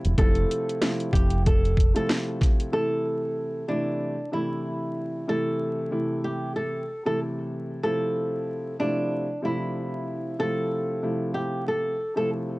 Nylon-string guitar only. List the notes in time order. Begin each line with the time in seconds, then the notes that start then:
Already playing: E4
0.18 A4
1.13 G4
1.47 A4
1.96 A4
2.73 A4
3.68 D4
4.33 E4
5.29 A4
6.24 G4
6.56 A4
7.06 A4
7.83 A4
8.80 D4
9.45 E4
10.40 A4
11.34 G4
11.68 A4
12.17 A4